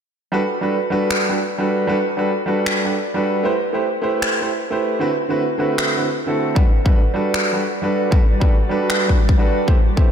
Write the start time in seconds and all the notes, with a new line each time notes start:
0.32 G3 D4 F#4 A4 B4
0.61 G3 D4 F#4 A4 B4
0.90 G3 D4 F#4 A4 B4
1.11 finger snap
1.29 G3 D4 F#4 A4 B4
1.58 G3 D4 F#4 A4 B4
1.87 G3 D4 F#4 A4 B4
2.17 G3 D4 F#4 A4 B4
2.46 G3 D4 F#4 A4 B4
2.66 finger snap
2.85 G3 D4 F#4 A4 B4
3.14 G3 D4 F#4 A4 B4
3.43 A3 E4 G4 B4 C5
3.73 A3 E4 G4 B4 C5
4.02 A3 E4 G4 B4 C5
4.22 finger snap
4.41 A3 E4 G4 B4 C5
4.70 A3 E4 G4 B4 C5
4.99 D3 A3 C4 E4 F#4 B4
5.28 D3 A3 C4 E4 F#4 B4
5.58 D3 A3 C4 E4 F#4 B4
5.78 finger snap
5.97 D3 A3 C4 E4 F#4 B4
6.26 D3 A3 C4 E4 F#4 A4
6.55 G3 D4 F#4 A4 B4 D5, kick
6.85 G3 D4 F#4 A4 B4, kick
7.14 G3 D4 F#4 A4 B4
7.34 finger snap
7.53 G3 D4 F#4 A4 B4
7.82 G3 D4 F#4 A4 B4
8.11 G3 D4 F#4 A4 B4, kick
8.40 G3 D4 F#4 A4 B4, kick
8.69 G3 D4 F#4 A4 B4
8.90 finger snap
9.08 G3 D4 F#4 A4 B4, kick
9.29 kick
9.38 G3 D4 F#4 A4 B4
9.67 A3 C4 E4 G4 A4 B4 C5, kick, riser
9.96 A3 E4 G4 B4 C5, kick